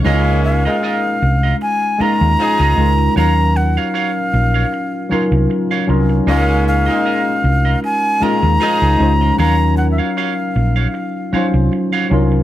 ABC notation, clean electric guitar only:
X:1
M:4/4
L:1/16
Q:"Swing 16ths" 1/4=77
K:Db
V:1 name="Clean electric guitar"
[FBe] z2 [FBe] [FBe] z2 [FBe] z2 [FBe] z2 [FBe] z2 | [Gdf] z2 [Gdf] [Gdf] z2 [Gdf] z2 [Gdf] z2 [Gdf] z2 | [FBe] z2 [FBe] [FBe] z2 [FBe] z2 [FBe] z [FBe] z2 [FBe] | [Gdf] z2 [Gdf] [Gdf] z2 [Gdf] z2 [Gdf] z2 [Gdf] z2 |]